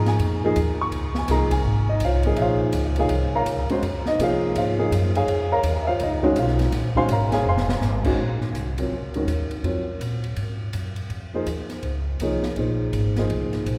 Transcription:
Already playing: G#2 F3 A#3 D#4 G#4
0.06 G#5, snare, ride
0.19 F2, ride
0.44 F3 A#3 D#4 G#4
0.56 D#2, hi-hat pedal, ride
0.81 C#6
0.91 C#2, ride
1.15 G#5, snare
1.28 C2 F3 A#3 D#4 G#4 A#5, snare, hi-hat pedal, ride
1.51 G#5, kick, ride
1.64 G#1
1.89 D#4 D#5
2.00 C2, hi-hat pedal, ride
2.05 F4 C5 C#5 F5
2.23 F3 A#3 D#4 G#4, ride
2.36 A#1 E5, ride
2.41 F4 C5 C#5 F5
2.73 C#2, hi-hat pedal, ride
2.96 F3 A#3 D#4 G#4 G#5, ride
3.00 C#5 F5
3.09 C2, ride
3.35 A#4 C#5 F5 A#5
3.46 C#2, hi-hat pedal, ride
3.69 G#3 C#4 F#4 C5, muted upright bass stroke, ride
3.82 F2, ride
4.05 D#4 D#5, muted upright bass stroke, snare
4.19 C3 F3 A#3 D#4 G#4, hi-hat pedal, ride
4.23 F4 C5 C#5 F5
4.55 G#2 F4 C5 C#5 F5, ride
4.78 F3 A#3 D#4 G#4
4.91 F#2, hi-hat pedal, ride
5.15 G#4 C#5 F5 G#5, ride
5.27 F2, ride
5.52 A#4 C#5 F5 A#5
5.63 D#2, hi-hat pedal, ride
5.83 E5
5.87 F4 C5 C#5 F5
6.00 C#2 D#5, ride
6.04 D#4
6.23 D#3 G#3 C#4 F#4 G#4 A#4 C#5
6.36 B1 F4 C5 C#5 F5, hi-hat pedal, ride
6.48 snare
6.59 snare, ride
6.72 A#1, snare, ride
6.95 D#3 G#3 C#4 F#4 C5 F5 G#5 C6, kick
7.08 G#1 C#5, hi-hat pedal, ride
7.12 A#4 F5 A#5
7.32 G#4 C#5 F5 G#5, snare, ride
7.46 F1 C5 F5 G#5 C6
7.57 snare
7.69 snare
7.81 G#1, snare, hi-hat pedal
8.04 D#3 G#3 C#4 F#4, kick, crash
8.17 A#1
8.41 snare
8.53 C2, hi-hat pedal, ride
8.78 F#3 C4 F4 A#4 C#5, ride
8.90 C#2
9.14 D#3 G#3 C#4 F#4 A#4, ride
9.27 D#2, hi-hat pedal, ride
9.51 ride
9.63 F2 F#3 C4 F4 A#4 C#5, ride
9.99 A#2, hi-hat pedal, ride
10.24 ride
10.36 G#2, ride
10.73 F#2, hi-hat pedal, ride
10.96 ride
11.09 F2, ride
11.34 F3 A#3 D#4 G#4 C5
11.46 D#2, hi-hat pedal, ride
11.70 snare, ride
11.83 C#2, ride
12.20 C2 F3 A#3 D#4 G#4 C#5, hi-hat pedal, ride
12.43 muted upright bass stroke, snare
12.56 A#1 F3 A#3 D#4 G#4 C5, ride
12.93 G#1, hi-hat pedal, ride
13.16 F3 A#3 D#4 G#4 C5, snare, ride
13.30 C2, ride
13.53 snare, ride
13.66 A#1, hi-hat pedal, ride

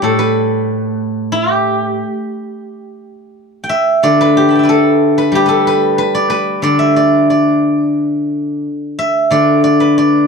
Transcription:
Already playing: G3 A3 B3 D4 E4 G4 B4
0.02 A2 A4
0.19 B4
1.32 G4
3.64 G5
3.69 E5
4.03 D3 D5
4.21 B4
4.37 G4
4.49 A5 B5
4.55 E5 G5
4.63 B4 D5
4.69 A4
5.18 B4
5.32 G3 G4
5.46 A4 B4
5.67 B4
5.98 B4
6.15 D5
6.30 B4
6.62 D3 D5
6.79 E5
6.96 D5
7.30 D5
8.99 E5
9.31 D3 D5
9.64 D5
9.80 B4
9.98 D5

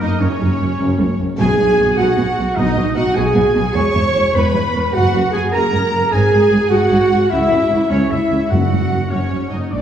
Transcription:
0.00 F#1 F#2 D#4 D#5
0.20 F#1 F#2 C#4 C#5
0.41 F#1 F#2
0.59 F#1 F#2
0.79 F#1 F#2
0.98 F#1 F#2
1.18 F#1 F#2
1.37 B1 B2 G#4 G#5
1.57 B1 B2
1.77 B1 B2
1.96 B1 B2 F#4 F#5
2.17 B1 B2
2.37 B1 B2
2.56 B1 B2 D#4 D#5
2.75 B1 B2
2.95 B1 B2 F#4 F#5
3.15 B1 B2 G#4 G#5
3.34 B1 B2
3.54 B1 B2
3.74 E1 E2 C#5 C#6
3.94 E1 E2
4.14 E1 E2
4.34 E1 E2 B4 B5
4.54 E1 E2
4.73 E1 E2
4.92 F#1 F#2 F#4 F#5
5.13 F#1 F#2
5.30 F#1 F#2 G#4 G#5
5.51 F#1 F#2 A#4 A#5
5.72 F#1 F#2
5.92 F#1 F#2
6.10 G#1 G#2 G#4 G#5
6.32 G#1 G#2
6.51 G#1 G#2
6.69 G#1 G#2 F#4 F#5
6.91 G#1 G#2
7.11 G#1 G#2
7.29 C#2 C#3 E4 E5
7.50 C#2 C#3
7.70 C#2 C#3
7.89 C#2 C#3 C#4 C#5
8.09 C#2 C#3 E4 E5
8.30 C#2 C#3
8.49 F#1 F#2 F#4 F#5
8.70 F#1 F#2
8.90 F#1 F#2
9.09 F#1 F#2 C#4 C#5
9.31 F#1 F#2
9.49 F#1 F#2 D#4 D#5
9.70 A#1 A#2 D4 D5

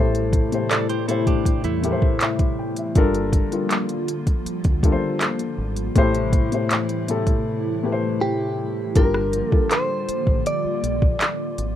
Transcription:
Already playing: A1 A2 C3 E3 G3 A3 E4 G4 A4 C5
0.15 closed hi-hat
0.33 kick, closed hi-hat
0.52 A2 A3 E4 G4 C5, closed hi-hat
0.71 A4 D5, clap, closed hi-hat
0.89 G4 C5, closed hi-hat
1.08 A2 A3 E4 G4 A4 C5, closed hi-hat
1.27 D4 G4, kick, closed hi-hat
1.45 muted fingered electric bass stroke, kick, closed hi-hat
1.64 E2 A3 E4, closed hi-hat
1.83 A2 A3 E4 G4 A#4, closed hi-hat
1.92 C5
2.02 kick
2.21 E5, clap, closed hi-hat
2.39 kick, closed hi-hat
2.59 G5
2.76 E5, closed hi-hat
2.95 G1 D3 F3 G3 A#3 D4 F4 A4 A#4, kick, closed hi-hat
3.15 closed hi-hat
3.33 kick, closed hi-hat
3.52 G3 D4 F4 A4 A#4, closed hi-hat
3.71 clap, closed hi-hat
3.89 closed hi-hat
4.08 closed hi-hat
4.27 kick, closed hi-hat
4.46 muted fingered electric bass stroke, closed hi-hat
4.64 D2, kick, closed hi-hat
4.83 G3 D4 F4 A4 A#4, kick, closed hi-hat
4.92 C5
5.21 clap, closed hi-hat
5.39 closed hi-hat
5.58 G#1
5.76 closed hi-hat
5.95 A1 A2 C3 E3 A3 E4 G4 C5, kick, closed hi-hat
6.15 closed hi-hat
6.33 kick, closed hi-hat
6.52 A2 A3 E4 G4 C5, closed hi-hat
6.71 clap, closed hi-hat
6.89 closed hi-hat
7.08 A2 A3 E4 G4 A4, closed hi-hat
7.27 kick, closed hi-hat
7.83 A2 A3 E4 G4 B4
7.92 C5
8.21 G4
8.95 G1 D3 F3 G3 A#3 D4 F4 G4 A#4, kick, closed hi-hat
9.14 cross-stick
9.33 closed hi-hat
9.50 G3 D4 F4 A4, muted fingered electric bass stroke, kick
9.54 A#4
9.71 C5, clap, closed hi-hat
10.08 muted fingered electric bass stroke, closed hi-hat
10.27 A1, kick
10.46 D5, closed hi-hat
10.65 muted fingered electric bass stroke
10.83 A#1, closed hi-hat
11.02 kick
11.21 clap, closed hi-hat
11.58 G#1, closed hi-hat

